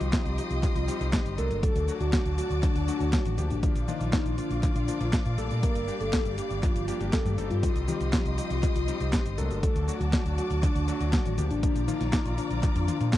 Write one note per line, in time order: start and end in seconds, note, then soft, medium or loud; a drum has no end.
0.00 0.11 C2 medium
0.00 0.35 G3 medium
0.00 0.35 C4 medium
0.00 0.35 D#4 medium
0.00 0.35 G4 loud
0.00 1.59 G4 medium
0.00 1.61 D#5 medium
0.00 1.61 C6 medium
0.00 1.61 D#6 loud
0.00 closed hi-hat soft
0.00 cabasa soft
0.13 0.34 F4 loud
0.13 kick loud
0.13 snare loud
0.13 clap medium
0.13 closed hi-hat medium
0.13 cabasa soft
0.26 0.37 C2 medium
0.26 closed hi-hat soft
0.26 cabasa soft
0.38 0.85 G3 medium
0.38 0.85 C4 medium
0.38 0.85 D#4 medium
0.38 0.69 F4 loud
0.38 0.85 G4 medium
0.38 closed hi-hat medium
0.38 cabasa medium
0.51 0.61 C2 medium
0.51 closed hi-hat soft
0.51 cabasa soft
0.63 kick loud
0.63 clap medium
0.63 closed hi-hat loud
0.63 cabasa soft
0.75 0.87 C2 medium
0.75 1.07 F4 loud
0.75 closed hi-hat soft
0.75 cabasa soft
0.88 0.97 G3 medium
0.88 0.98 C4 medium
0.88 0.97 D#4 medium
0.88 0.97 G4 loud
0.88 closed hi-hat medium
0.88 cabasa medium
1.00 1.12 C2 medium
1.00 1.35 G3 medium
1.00 1.35 C4 medium
1.00 1.35 D#4 medium
1.00 1.35 G4 medium
1.00 closed hi-hat soft
1.00 cabasa soft
1.13 kick loud
1.13 snare loud
1.13 clap medium
1.13 closed hi-hat medium
1.13 cabasa soft
1.26 1.37 G1 medium
1.26 closed hi-hat soft
1.26 cabasa soft
1.38 1.49 C2 loud
1.38 1.85 F#3 medium
1.38 1.85 A3 medium
1.38 1.85 D4 medium
1.38 1.85 A4 medium
1.38 1.59 A#4 medium
1.38 closed hi-hat medium
1.38 cabasa medium
1.51 1.62 G1 medium
1.51 closed hi-hat soft
1.51 cabasa soft
1.63 3.61 F#4 medium
1.63 1.94 A4 loud
1.63 3.61 D5 medium
1.63 3.61 A5 medium
1.63 3.61 D6 medium
1.63 kick loud
1.63 closed hi-hat medium
1.63 cabasa soft
1.76 1.87 D2 medium
1.76 closed hi-hat soft
1.76 cabasa soft
1.88 2.35 F#3 medium
1.88 2.35 A3 medium
1.88 2.35 D4 medium
1.88 2.35 F#4 loud
1.88 cabasa medium
2.00 2.11 D2 medium
2.00 2.32 F#4 loud
2.00 closed hi-hat soft
2.00 cabasa soft
2.13 kick loud
2.13 snare loud
2.13 clap medium
2.13 closed hi-hat medium
2.13 cabasa soft
2.26 2.36 D2 medium
2.26 closed hi-hat soft
2.26 cabasa soft
2.38 2.85 F#3 medium
2.38 2.85 A3 medium
2.38 2.85 D4 medium
2.38 2.59 F#4 medium
2.38 2.85 F#4 medium
2.38 closed hi-hat medium
2.38 cabasa medium
2.50 2.61 D2 medium
2.50 closed hi-hat soft
2.50 cabasa soft
2.63 3.04 D4 loud
2.63 kick loud
2.63 clap medium
2.63 closed hi-hat medium
2.63 cabasa soft
2.75 2.86 D2 medium
2.75 closed hi-hat soft
2.75 cabasa soft
2.88 2.97 F#3 medium
2.88 2.97 A3 medium
2.88 2.97 D4 medium
2.88 2.97 F#4 loud
2.88 closed hi-hat medium
2.88 cabasa medium
3.00 3.11 D2 medium
3.00 3.35 F#3 medium
3.00 3.35 A3 medium
3.00 3.35 D4 medium
3.00 3.35 F#4 medium
3.00 closed hi-hat soft
3.00 cabasa soft
3.13 3.44 F#4 medium
3.13 kick loud
3.13 snare loud
3.13 clap medium
3.13 closed hi-hat medium
3.13 cabasa soft
3.25 3.36 A1 medium
3.25 closed hi-hat soft
3.25 high tom medium
3.25 cabasa soft
3.38 3.49 D2 medium
3.38 3.85 F3 medium
3.38 3.85 A#3 medium
3.38 3.85 D4 medium
3.38 3.85 G4 loud
3.38 closed hi-hat medium
3.38 cabasa medium
3.50 3.61 A1 medium
3.50 3.82 D4 loud
3.50 closed hi-hat soft
3.50 cabasa soft
3.63 5.61 F4 medium
3.63 7.59 D5 medium
3.63 7.59 F5 medium
3.63 7.59 D6 loud
3.63 kick loud
3.63 closed hi-hat medium
3.63 cabasa soft
3.75 3.86 A#1 medium
3.75 closed hi-hat soft
3.75 cabasa soft
3.88 4.35 F3 medium
3.88 4.35 A#3 medium
3.88 4.35 D4 medium
3.88 4.09 D#4 medium
3.88 4.35 F4 loud
3.88 high tom medium
3.88 cabasa medium
4.01 4.11 A#1 medium
4.01 closed hi-hat soft
4.01 cabasa soft
4.13 4.34 D#4 medium
4.13 kick loud
4.13 snare loud
4.13 clap medium
4.13 closed hi-hat medium
4.13 cabasa soft
4.25 4.36 A#1 medium
4.25 closed hi-hat soft
4.25 cabasa soft
4.38 4.85 F3 medium
4.38 4.85 A#3 medium
4.38 4.69 D4 loud
4.38 4.85 D4 medium
4.38 4.85 F4 medium
4.38 closed hi-hat medium
4.38 cabasa medium
4.50 4.61 A#1 medium
4.50 closed hi-hat soft
4.50 cabasa soft
4.63 kick loud
4.63 clap medium
4.63 closed hi-hat medium
4.63 cabasa soft
4.75 4.86 A#1 medium
4.75 5.07 D4 loud
4.75 closed hi-hat soft
4.75 cabasa soft
4.88 4.97 F3 medium
4.88 4.97 A#3 medium
4.88 4.97 D4 medium
4.88 4.97 F4 loud
4.88 closed hi-hat medium
4.88 cabasa medium
5.00 5.11 A#1 medium
5.00 5.35 F3 medium
5.00 5.35 A#3 medium
5.00 5.35 D4 medium
5.00 5.35 F4 loud
5.00 closed hi-hat soft
5.00 cabasa soft
5.13 kick loud
5.13 snare loud
5.13 clap medium
5.13 closed hi-hat medium
5.13 cabasa soft
5.26 5.37 A#2 medium
5.26 closed hi-hat soft
5.26 cabasa soft
5.38 5.49 A#1 medium
5.38 5.85 G3 medium
5.38 5.85 A#3 medium
5.38 5.85 D4 medium
5.38 5.85 A4 medium
5.38 5.59 A4 medium
5.38 closed hi-hat medium
5.38 cabasa medium
5.50 5.61 A#2 medium
5.50 closed hi-hat soft
5.50 cabasa soft
5.63 9.59 G4 medium
5.63 5.94 A#4 loud
5.63 kick loud
5.63 closed hi-hat medium
5.63 cabasa soft
5.75 5.86 G1 medium
5.75 closed hi-hat soft
5.75 cabasa soft
5.88 6.35 G3 medium
5.88 6.35 A#3 medium
5.88 6.35 D4 medium
5.88 6.35 G4 loud
5.88 cabasa medium
6.00 6.11 G1 medium
6.00 6.32 A4 loud
6.00 closed hi-hat soft
6.00 cabasa soft
6.13 kick loud
6.13 snare loud
6.13 clap medium
6.13 closed hi-hat medium
6.13 cabasa soft
6.25 6.36 G1 medium
6.25 closed hi-hat soft
6.25 cabasa soft
6.38 6.85 G3 medium
6.38 6.85 A#3 medium
6.38 6.85 D4 medium
6.38 6.85 G4 medium
6.38 6.59 G4 medium
6.38 closed hi-hat medium
6.38 cabasa medium
6.50 6.61 G1 medium
6.50 closed hi-hat soft
6.50 cabasa soft
6.63 7.04 F4 loud
6.63 kick loud
6.63 clap soft
6.63 closed hi-hat medium
6.63 cabasa soft
6.75 6.86 G1 medium
6.75 closed hi-hat soft
6.75 cabasa soft
6.88 6.97 G3 medium
6.88 6.97 A#3 medium
6.88 6.97 D4 medium
6.88 6.97 G4 loud
6.88 closed hi-hat medium
6.88 cabasa medium
7.00 7.11 G1 medium
7.00 7.35 G3 medium
7.00 7.35 A#3 medium
7.00 7.35 D4 medium
7.00 7.35 G4 medium
7.00 closed hi-hat soft
7.00 cabasa soft
7.13 7.44 A4 loud
7.13 kick loud
7.13 snare loud
7.13 clap medium
7.13 closed hi-hat medium
7.13 cabasa soft
7.25 7.36 G2 medium
7.25 closed hi-hat soft
7.25 high tom medium
7.25 cabasa soft
7.38 7.49 G1 loud
7.38 7.85 G3 medium
7.38 7.85 C4 medium
7.38 7.85 D#4 medium
7.38 7.85 A4 medium
7.38 closed hi-hat medium
7.38 cabasa medium
7.50 7.61 G2 medium
7.50 7.82 F4 loud
7.50 closed hi-hat soft
7.50 cabasa soft
7.63 9.61 D#5 medium
7.63 9.61 C6 medium
7.63 9.61 D#6 medium
7.63 kick loud
7.63 closed hi-hat medium
7.63 cabasa soft
7.75 7.86 C2 medium
7.75 closed hi-hat soft
7.75 cabasa soft
7.88 8.35 G3 medium
7.88 8.35 C4 medium
7.88 8.35 D#4 medium
7.88 8.09 F4 medium
7.88 8.35 G4 loud
7.88 high tom medium
7.88 cabasa medium
8.01 8.11 C2 medium
8.01 closed hi-hat soft
8.01 cabasa soft
8.13 8.34 F4 medium
8.13 kick loud
8.13 snare loud
8.13 clap medium
8.13 closed hi-hat medium
8.13 cabasa soft
8.25 8.37 C2 medium
8.25 closed hi-hat soft
8.25 cabasa soft
8.38 8.85 G3 medium
8.38 8.85 C4 medium
8.38 8.85 D#4 medium
8.38 8.69 F4 loud
8.38 8.85 G4 medium
8.38 closed hi-hat medium
8.38 cabasa medium
8.50 8.61 C2 medium
8.50 closed hi-hat soft
8.50 cabasa soft
8.63 kick loud
8.63 clap soft
8.63 closed hi-hat medium
8.63 cabasa soft
8.75 8.86 C2 medium
8.75 9.06 F4 loud
8.75 closed hi-hat soft
8.75 cabasa soft
8.88 8.97 G3 medium
8.88 8.97 C4 medium
8.88 8.97 D#4 medium
8.88 8.97 G4 loud
8.88 closed hi-hat medium
8.88 cabasa medium
9.00 9.12 C2 medium
9.00 9.35 G3 medium
9.00 9.35 C4 medium
9.00 9.35 D#4 medium
9.00 9.35 G4 medium
9.00 closed hi-hat soft
9.00 cabasa soft
9.13 kick loud
9.13 snare loud
9.13 clap medium
9.13 closed hi-hat medium
9.13 cabasa soft
9.26 9.37 G1 medium
9.26 closed hi-hat soft
9.26 cabasa soft
9.38 9.49 C2 loud
9.38 9.85 F#3 medium
9.38 9.85 A3 medium
9.38 9.85 D4 medium
9.38 9.85 A4 medium
9.38 9.59 A#4 medium
9.38 closed hi-hat medium
9.38 cabasa medium
9.51 9.62 G1 medium
9.51 closed hi-hat soft
9.51 cabasa soft
9.63 11.61 F#4 medium
9.63 9.94 A4 loud
9.63 11.61 D5 medium
9.63 11.61 A5 medium
9.63 11.61 D6 medium
9.63 kick loud
9.63 closed hi-hat loud
9.63 cabasa soft
9.76 9.87 D2 medium
9.76 closed hi-hat soft
9.76 cabasa soft
9.88 10.35 F#3 medium
9.88 10.35 A3 medium
9.88 10.35 D4 medium
9.88 10.35 F#4 loud
9.88 cabasa medium
10.00 10.11 D2 medium
10.00 10.32 F#4 loud
10.00 closed hi-hat soft
10.00 cabasa soft
10.13 kick loud
10.13 snare loud
10.13 clap medium
10.13 closed hi-hat medium
10.13 cabasa soft
10.26 10.36 D2 medium
10.26 closed hi-hat soft
10.26 cabasa soft
10.38 10.85 F#3 medium
10.38 10.85 A3 medium
10.38 10.85 D4 medium
10.38 10.59 F#4 medium
10.38 10.85 F#4 medium
10.38 closed hi-hat medium
10.38 cabasa medium
10.51 10.61 D2 medium
10.51 closed hi-hat soft
10.51 cabasa soft
10.63 11.04 D4 loud
10.63 kick loud
10.63 clap soft
10.63 closed hi-hat loud
10.63 cabasa soft
10.76 10.86 D2 medium
10.76 closed hi-hat soft
10.76 cabasa soft
10.88 10.97 F#3 loud
10.88 10.97 A3 medium
10.88 10.97 D4 medium
10.88 10.97 F#4 loud
10.88 closed hi-hat medium
10.88 cabasa medium
11.00 11.11 D2 medium
11.00 11.35 F#3 medium
11.00 11.35 A3 medium
11.00 11.35 D4 medium
11.00 11.35 F#4 loud
11.00 closed hi-hat soft
11.00 cabasa soft
11.13 11.44 F#4 loud
11.13 kick loud
11.13 snare loud
11.13 clap medium
11.13 closed hi-hat medium
11.13 cabasa soft
11.26 11.37 A1 medium
11.26 closed hi-hat soft
11.26 high tom medium
11.26 cabasa soft
11.38 11.49 D2 loud
11.38 11.85 F3 medium
11.38 11.85 A#3 medium
11.38 11.85 D4 medium
11.38 11.85 G4 loud
11.38 closed hi-hat medium
11.38 cabasa medium
11.50 11.62 A1 medium
11.50 11.81 D4 loud
11.50 closed hi-hat soft
11.50 cabasa soft
11.63 13.18 F4 medium
11.63 13.18 D5 medium
11.63 13.18 A#5 medium
11.63 13.18 D6 medium
11.63 kick loud
11.63 closed hi-hat loud
11.63 cabasa soft
11.76 11.87 A#1 medium
11.76 closed hi-hat soft
11.76 cabasa soft
11.88 12.35 F3 medium
11.88 12.35 A#3 medium
11.88 12.35 D4 medium
11.88 12.09 D#4 medium
11.88 12.35 F4 loud
11.88 closed hi-hat soft
11.88 high tom medium
11.88 cabasa medium
12.01 12.11 A#1 medium
12.01 snare soft
12.01 closed hi-hat soft
12.01 cabasa soft
12.13 12.34 D#4 medium
12.13 kick loud
12.13 snare loud
12.13 clap medium
12.13 closed hi-hat loud
12.13 cabasa soft
12.26 12.37 A#1 medium
12.26 closed hi-hat soft
12.26 cabasa soft
12.38 12.85 F3 medium
12.38 12.85 A#3 medium
12.38 12.85 D4 medium
12.38 12.69 D4 loud
12.38 12.85 F4 medium
12.38 closed hi-hat medium
12.38 cabasa medium
12.51 12.62 A#1 medium
12.51 closed hi-hat soft
12.51 cabasa soft
12.63 kick loud
12.63 clap medium
12.63 closed hi-hat loud
12.63 cabasa soft
12.75 12.87 F2 medium
12.75 13.07 D4 loud
12.75 closed hi-hat soft
12.75 cabasa soft
12.88 12.97 F3 medium
12.88 12.97 A#3 medium
12.88 12.97 D4 medium
12.88 12.97 F4 medium
12.88 closed hi-hat medium
12.88 high tom medium
12.88 cabasa medium
13.00 13.11 A#2 medium
13.00 13.18 F3 medium
13.00 13.18 A#3 medium
13.00 13.18 D4 medium
13.00 13.18 F4 medium
13.00 closed hi-hat soft
13.00 cabasa soft
13.13 kick loud
13.13 snare loud
13.13 clap medium
13.13 closed hi-hat loud
13.13 cabasa soft